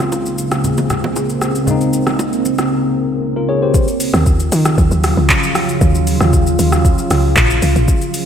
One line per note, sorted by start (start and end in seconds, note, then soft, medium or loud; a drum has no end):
0.00 1.62 C#3 medium
0.00 3.70 C#3 medium
0.00 1.63 G#3 medium
0.00 1.64 A#3 medium
0.00 3.71 A#3 medium
0.00 1.64 C4 medium
0.00 3.70 C4 medium
0.00 1.68 F4 medium
0.00 1.66 G#4 medium
0.00 cross-stick medium
0.00 low bongo medium
0.00 shaker soft
0.12 high bongo medium
0.12 shaker medium
0.26 shaker soft
0.38 shaker medium
0.51 cross-stick medium
0.51 high bongo medium
0.51 shaker medium
0.64 low conga medium
0.64 shaker medium
0.77 low bongo medium
0.77 shaker soft
0.90 cross-stick medium
0.90 low conga medium
0.90 shaker medium
1.04 low bongo medium
1.16 high bongo medium
1.16 shaker medium
1.29 shaker soft
1.42 cross-stick medium
1.42 shaker medium
1.55 shaker medium
1.65 3.69 C#3 medium
1.65 3.70 G#3 medium
1.65 3.71 A#3 medium
1.65 3.72 A#4 medium
1.65 low conga medium
1.65 shaker medium
1.69 3.71 C4 medium
1.69 3.72 D#4 medium
1.81 shaker soft
1.93 shaker medium
2.07 cross-stick medium
2.07 low bongo medium
2.07 shaker soft
2.19 high bongo medium
2.19 shaker medium
2.33 shaker soft
2.45 low bongo soft
2.45 shaker medium
2.58 cross-stick medium
2.58 high bongo medium
2.58 shaker medium
3.36 3.48 F4 medium
3.36 3.48 A#4 medium
3.49 3.62 G#4 medium
3.49 3.61 C#5 medium
3.62 3.87 G4 medium
3.62 3.87 C5 medium
3.74 7.84 C#3 medium
3.74 7.84 F#3 medium
3.74 7.84 F4 medium
3.74 kick loud
3.74 shaker medium
3.88 shaker medium
4.00 open hi-hat medium
4.00 shaker loud
4.14 4.51 D#2 loud
4.14 cross-stick medium
4.14 shaker medium
4.26 kick medium
4.26 shaker medium
4.40 shaker medium
4.52 4.77 D#3 loud
4.52 open hi-hat medium
4.52 shaker loud
4.65 cross-stick medium
4.65 shaker medium
4.78 4.91 D#2 loud
4.78 kick loud
4.78 shaker medium
4.91 5.16 D#2 medium
4.91 shaker soft
5.04 cross-stick medium
5.04 open hi-hat medium
5.04 shaker medium
5.17 5.29 C#2 medium
5.30 kick loud
5.30 clap loud
5.30 shaker medium
5.43 shaker medium
5.55 cross-stick medium
5.55 open hi-hat soft
5.55 shaker medium
5.69 shaker medium
5.81 6.19 D#2 loud
5.81 kick loud
5.81 shaker medium
5.95 shaker medium
6.07 open hi-hat medium
6.07 shaker loud
6.21 6.58 D#2 loud
6.21 cross-stick medium
6.21 shaker medium
6.33 kick medium
6.33 shaker medium
6.47 shaker medium
6.59 6.97 D#2 medium
6.59 open hi-hat medium
6.59 shaker loud
6.72 cross-stick medium
6.72 shaker medium
6.85 kick loud
6.85 shaker medium
6.98 shaker soft
7.11 7.36 C#2 medium
7.11 cross-stick medium
7.11 open hi-hat medium
7.11 shaker medium
7.36 7.61 A#1 loud
7.36 kick loud
7.36 clap loud
7.36 shaker medium
7.50 shaker medium
7.62 7.75 C#2 medium
7.62 open hi-hat soft
7.62 shaker medium
7.76 7.88 A#1 medium
7.76 shaker medium
7.88 8.26 G#3 medium
7.88 8.26 C4 medium
7.88 8.26 C#4 medium
7.88 kick loud
7.88 shaker medium
8.01 shaker medium
8.14 open hi-hat medium
8.14 shaker loud